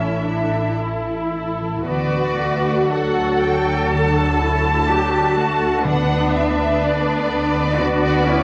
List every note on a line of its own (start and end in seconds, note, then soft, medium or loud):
0.00 0.67 A1 soft
0.00 1.91 A2 soft
0.00 1.60 E3 soft
0.00 1.33 A3 soft
0.00 0.25 C#4 soft
0.00 0.24 E4 soft
0.00 1.33 E4 soft
0.00 0.24 A4 soft
0.00 0.52 A4 soft
0.00 0.75 E5 soft
0.24 0.78 C#4 soft
0.24 0.79 D4 soft
0.24 1.31 E4 soft
0.24 1.31 A4 soft
0.53 1.06 A4 soft
0.79 1.75 A1 soft
0.79 1.90 C#4 soft
0.79 1.86 E4 soft
1.07 2.37 A4 soft
1.32 2.11 A3 soft
1.32 1.85 E4 soft
1.32 1.85 A4 soft
1.61 1.91 E3 soft
1.85 5.81 D2 soft
1.85 3.92 D3 soft
1.85 2.34 B3 soft
1.85 4.84 F#4 soft
1.85 3.88 F#4 soft
1.85 2.86 F#4 soft
1.85 2.85 B4 soft
1.85 2.86 D5 medium
2.12 3.67 A3 soft
2.38 2.90 A3 soft
2.38 3.15 A4 soft
2.64 3.41 D4 soft
2.87 4.88 F#3 soft
2.87 4.87 A4 soft
2.87 4.89 A4 soft
2.87 4.87 D5 soft
2.87 3.42 F#5 medium
3.16 4.41 A4 soft
3.41 4.16 D4 soft
3.41 3.92 G5 medium
3.68 5.60 A3 soft
3.91 5.84 D3 soft
3.91 4.40 D4 soft
3.91 5.81 A5 medium
4.17 4.64 D4 soft
4.40 4.89 E4 soft
4.40 5.12 A4 soft
4.66 5.36 D4 soft
4.88 5.36 F#3 soft
4.88 5.82 D4 soft
4.88 5.85 F#4 soft
4.88 5.37 G4 soft
4.88 5.83 A4 soft
4.88 8.43 D5 soft
5.13 5.89 A4 soft
5.37 5.85 A3 soft
5.37 8.43 D4 soft
5.37 5.84 F#4 medium
5.61 5.89 A3 soft
5.84 8.43 D2 medium
5.84 7.26 D3 medium
5.84 7.77 D3 medium
5.84 6.81 B3 medium
5.84 7.73 D4 medium
5.84 6.81 D4 soft
5.84 7.78 D4 medium
5.84 8.43 B4 medium
5.84 6.32 F#5 medium
6.09 7.53 G#3 soft
6.33 8.25 E4 soft
6.33 6.82 E5 medium
6.58 7.06 G#4 soft
6.82 7.76 B3 medium
6.82 7.76 D4 medium
6.82 8.43 B4 soft
6.82 8.43 D5 medium
7.07 8.43 G#4 soft
7.31 8.01 B3 soft
7.54 8.43 G#3 soft
7.76 8.43 D3 medium
7.76 8.43 B3 medium
7.76 8.26 D4 medium
7.76 8.43 F#4 medium
7.76 8.26 F#4 medium
8.02 8.43 B3 soft
8.26 8.43 C#4 medium
8.26 8.43 E4 medium
8.26 8.43 E4 soft